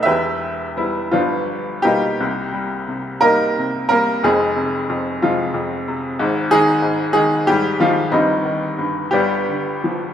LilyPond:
<<
  \new Staff \with { instrumentName = "Upright piano" } { \time 6/8 \key g \major \tempo 4. = 59 <g' b' e''>4. <f b d' f'>4 <g ais dis' g'>8~ | \key c \minor <g ais dis' g'>4. <bes ees' bes'>4 <bes bes'>8 | <aes c' aes'>4. <f aes f'>4 r8 | r8 <aes ees' aes'>4 <aes aes'>8 <g g'>8 <f f'>8 |
<ees g c' ees'>4 r8 <g b d' g'>4 r8 | }
  \new Staff \with { instrumentName = "Upright piano" } { \clef bass \time 6/8 \key g \major <e,, e,>4 <g b e'>8 <g,, g,>4 <b, f'>8 | \key c \minor <c, c>8 g8 c8 g8 c8 g8 | <f,, f,>8 c8 f,8 c8 f,8 c8 | <aes,, aes,>8 ees8 aes,8 ees8 aes,8 ees8 |
<g,, g,>8 ees8 g,8 <g,, g,>8 d8 f8 | }
>>